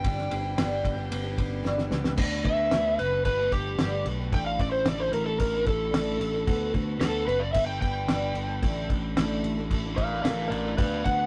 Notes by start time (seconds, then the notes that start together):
Already playing: G5
0.04 G1 G2 D3 G3 B3 D4 G4, kick, ride
0.18 snare
0.31 G1 G3 B3 D4 G4, ride
0.57 G1 G2 D3 G3 B3 D4 G4, snare, ride
0.84 G1, kick, ride
0.97 G3 B3 D4 G4
1.10 G1 G3 B3 D4 G4, ride
1.24 G3 B3 D4 G4
1.37 G1 G3 B3 D4 G4, kick, ride
1.63 G1 G2 D3 G3 B3 D4 G4, snare
1.78 snare
1.90 C#2 G3 B3 D4 G4, snare
2.02 G3 B3 D4 G4, snare
2.15 D2 D3 F#3 B3 D4 A4, kick, crash
2.43 D2 F#3 B3 D4 A4 E5, kick, crash
2.70 D2 D3 F#3 B3 D4 A4, snare, crash
2.99 F#1 B4, crash
3.11 B3 D4 A4
3.24 G1 A3 B3 D4 G4 B4, kick, crash
3.39 A3 B3 D4 G4
3.51 G1 A3 B3 D4 G4, kick, crash
3.78 G1 G2 D3 A3 B3 D4 G4, snare, crash
4.06 B1 A3 B3 D4 G4, crash
4.19 A3 B3 D4 G4
4.32 A1 A2 D3 A3 D4 E4 A4 G5, kick, crash
4.46 F5
4.58 A1 A3 D4 E4 A4 D5, kick, crash
4.72 C5
4.86 A1 A2 D3 A3 D4 E4 A4 D5, snare, crash
5.00 C5
5.12 A1 A#4, crash
5.26 A3 D4 E4 A4
5.39 A1 A3 D4 E4 A4 A#4, kick, crash
5.53 A3 D4 E4 A4
5.66 A1 A3 D4 E4 A4, kick, crash
5.92 A1 A2 D3 A3 D4 E4 A4, snare, crash
6.19 A1 A3 D4 E4 A4, crash
6.33 A3 D4 E4 A4
6.46 D2 D3 F#3 B3 F#4 A4, kick, crash
6.72 D2 F#3 B3 F#4 A4, kick, crash
6.98 D2 D3 F#3 B3 F#4 A4, snare, crash
7.27 F#1 B4, crash
7.39 B3 F#4 A4 D5
7.53 G1 G3 B3 D4 A4 E5, kick, crash
7.67 G3 B3 D4 A4 G5
7.81 G1 G3 B3 D4 A4 G5, kick, crash
8.08 G1 G2 D3 G3 B3 D4 A4, snare, crash
8.34 G1 G3 B3 D4 A4, crash
8.48 G3 B3 D4 A4
8.62 A1 A2 D3 A3 D4 E4 A4, kick, crash
8.89 A1 A3 D4 E4 A4, kick, crash
9.16 A1 A2 D3 A3 D4 E4 A4, snare, crash
9.43 A1, crash
9.57 A3 D4 E4 A4
9.70 A1 A3 D4 E4 A4, kick, crash
9.86 A3 D4 E4 A4
9.96 A1 A3 D4 D5 F5, kick, crash
10.00 E4 A4
10.22 A1 A2 D3 A3 D4 E4 D5 F5, snare, crash
10.26 A4
10.48 A1 A3 A#4 D5, crash
10.53 D4 E4 A4
10.66 A3 D4 E4 A4
10.77 D2 D3 F#3 B3 F#4 A4 B4 D5, kick, crash
11.04 D2 F#3 B3 F#4 A4 F#5, kick, crash